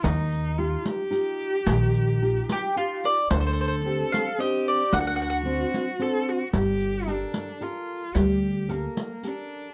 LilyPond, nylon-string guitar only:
\new Staff \with { instrumentName = "Nylon-string guitar" } { \time 3/4 \key g \minor \tempo 4 = 111 ees4 <ees' f' g'>4 <ees' f' g'>4 | ees4 <ees' f' g'>4 <ees' f' g'>4 | d4 <c' d' g'>4 <c' d' g'>4 | d4 <c' d' fis'>4 <c' d' fis'>4 |
g4 <g' a' bes'>4 <g' a' bes'>4 | g4 <g' a' bes'>4 <g' a' bes'>4 | }